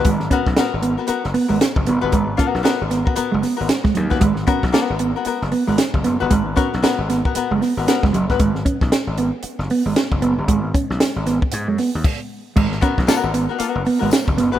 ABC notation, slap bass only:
X:1
M:4/4
L:1/16
Q:"Swing 16ths" 1/4=115
K:G#m
V:1 name="Slap bass" clef=bass
G,,,2 z B,,, z G,,,2 z2 F,,, z G,,, z F,,, F,,, =G,,, | G,,,2 z B,,, z G,,,2 z2 F,,, z G,,, z2 D,,2 | G,,,2 z B,,, z G,,,2 z2 F,,, z G,,, z F,,, F,,, =G,,, | G,,,2 z B,,, z G,,,2 z2 F,,, z G,,, z F,,, F,,, =G,,, |
G,,,2 z B,,, z G,,,2 z2 F,,, z G,,, z F,,, F,,, =G,,, | G,,,2 z B,,, z G,,,2 z G,, F,, z D,, z4 | G,,,2 z B,,, z G,,,2 z2 F,,, z G,,, z F,,, F,,, =G,,, |]